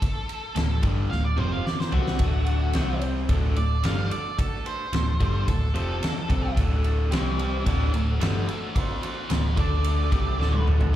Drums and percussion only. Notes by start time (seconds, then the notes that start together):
0.02 kick, ride
0.29 ride
0.56 snare, ride
0.83 kick, ride
1.12 snare
1.38 mid tom
1.67 snare
1.80 snare
1.92 floor tom
2.07 snare
2.19 kick, ride
2.46 ride
2.73 snare, ride
3.01 ride
3.29 kick, ride
3.56 ride
3.83 snare, ride
4.11 ride
4.39 kick, ride
4.66 ride
4.93 snare, ride
5.20 kick, ride
5.48 kick, ride
5.75 ride
6.03 snare, ride
6.30 kick, ride
6.57 kick, ride
6.84 ride
7.12 snare, ride
7.39 ride
7.66 kick, ride
7.94 ride
8.21 snare, ride
8.48 ride
8.76 kick, ride
9.03 ride
9.30 snare, ride
9.57 kick, ride
9.84 ride
10.12 kick, ride
10.41 snare
10.54 high tom
10.67 mid tom
10.81 floor tom